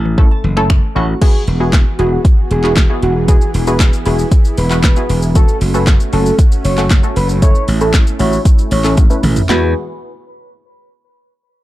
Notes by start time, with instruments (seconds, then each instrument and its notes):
Already playing: slap bass A1, synth pluck A3 C#4 E4 A4
0.05 synth arpeggio sound E3
0.18 synth pluck A3 C#4 E4 A4, kick
0.31 synth arpeggio sound A5
0.44 slap bass F#1, synth arpeggio sound E3
0.57 synth pluck A3 C#4 E4 A4, finger snap
0.70 finger snap, kick
0.95 slap bass A1, synth pluck A3 C#4 E4 F#4, synth arpeggio sound C#6
1.21 supersaw synth E3 B3 F#4 G#4, synth pluck B3 E4 F#4 G#4, analog synth lead G#4, kick, closed hi-hat, crash
1.47 slap bass E1, closed hi-hat
1.60 synth pluck B3 E4 F#4 G#4, analog synth lead G#4
1.73 kick, snare, clap, closed hi-hat
1.99 slap bass E1, synth pluck B3 E4 F#4 G#4, analog synth lead F#4, closed hi-hat
2.25 kick, closed hi-hat
2.51 slap bass E1, analog synth lead G#4, closed hi-hat
2.64 synth pluck B3 E4 F#4 G#4, clap
2.76 kick, snare, clap, closed hi-hat
2.90 synth pluck B3 E4 F#4 G#4
3.02 slap bass E1, analog synth lead F#4, closed hi-hat
3.28 synth pluck B3 E4 F#4 G#4, supersaw synth E4, analog synth lead G#4, kick, closed hi-hat, shaker
3.41 shaker
3.54 slap bass E1, open hi-hat, shaker
3.67 synth pluck B3 E4 F#4 G#4, analog synth lead B4, shaker
3.80 kick, snare, clap, closed hi-hat, shaker
3.93 shaker
4.06 slap bass E1, synth pluck B3 E4 F#4 G#4, analog synth lead G#4, open hi-hat, shaker
4.19 shaker
4.32 kick, closed hi-hat, shaker
4.45 shaker
4.58 slap bass E1, analog synth lead B4, open hi-hat, shaker
4.70 synth pluck B3 E4 F#4 B4, clap, shaker
4.83 analog synth lead B4, kick, snare, clap, closed hi-hat, shaker
4.96 synth pluck B3 E4 F#4 G#4, shaker
5.10 slap bass E1, open hi-hat, shaker
5.22 shaker
5.35 supersaw synth A3 C#4 F#4, synth pluck A3 C#4 F#4 A4, analog synth lead A4, kick, closed hi-hat, shaker
5.48 shaker
5.61 slap bass F#1, open hi-hat, shaker
5.74 synth pluck A3 C#4 F#4 A4, analog synth lead B4, shaker
5.87 kick, snare, clap, closed hi-hat, shaker
6.00 shaker
6.13 slap bass F#1, synth pluck A3 C#4 F#4 A4, analog synth lead A4, open hi-hat, shaker
6.26 shaker
6.39 kick, closed hi-hat, shaker
6.52 shaker
6.65 slap bass F#1, analog synth lead C#5, open hi-hat, shaker
6.78 synth pluck A3 C#4 F#4 A4, clap, shaker
6.90 kick, snare, clap, closed hi-hat, shaker
7.03 synth pluck A3 C#4 F#4 A4, shaker
7.16 slap bass F#1, analog synth lead B4, open hi-hat, shaker
7.29 shaker
7.42 synth pluck A3 C#4 E4 A4, supersaw synth E4, analog synth lead C#5, kick, closed hi-hat, shaker
7.55 shaker
7.68 slap bass A1, open hi-hat, shaker
7.81 synth pluck A3 C#4 E4 A4, analog synth lead A4, shaker
7.94 kick, snare, clap, closed hi-hat, shaker
8.07 shaker
8.19 slap bass A1, synth pluck A3 C#4 E4 F#4, analog synth lead C#5, open hi-hat, shaker
8.33 shaker
8.45 kick, closed hi-hat, shaker
8.59 shaker
8.71 slap bass A1, analog synth lead C#5, open hi-hat, shaker
8.84 synth pluck A3 C#4 E4 A4, clap, shaker
8.97 kick, closed hi-hat, high tom, shaker
9.10 synth pluck A3 C#4 E4 B4, shaker
9.23 slap bass A1, mid tom, open hi-hat, shaker
9.36 floor tom, shaker
9.49 slap bass E2, supersaw synth E3 E4 F#4 G#4, synth pluck G#3 B3 E4 F#4, analog synth lead B4, snare, clap